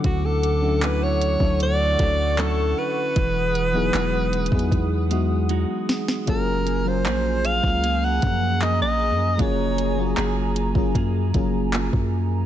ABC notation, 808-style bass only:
X:1
M:4/4
L:1/16
Q:1/4=77
K:F#mix
V:1 name="808-style bass" clef=bass
=D,,6- D,, D,,3 D,,4 z2 | E,,,4 E,,,3 E,, E,,4- E,, z3 | F,,,4 A,,,3 C,,3 F,,3 A,,,3/2 F,,3/2 | F,,,4 F,,,3 F,,, F,,2 F,,,3 F,,3 |]